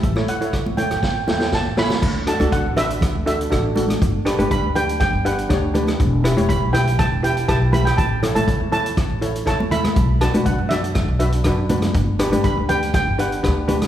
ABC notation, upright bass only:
X:1
M:4/4
L:1/16
Q:1/4=121
K:D
V:1 name="Upright bass" clef=bass
A,,,2 z3 E,,2 A,,,3 E,,3 A,,,2 z | D,,3 D,,2 A,,,4 D,,3 A,,,4 | G,,,3 G,,,2 D,,4 G,,,3 D,,4 | E,,,3 E,,,2 B,,,4 E,,,3 B,,,4 |
A,,,3 A,,,2 E,,4 A,,,3 E,,4 | B,,,3 B,,,2 F,,4 B,,,3 F,,4 | G,,,3 G,,,2 D,,4 G,,,3 D,,4 |]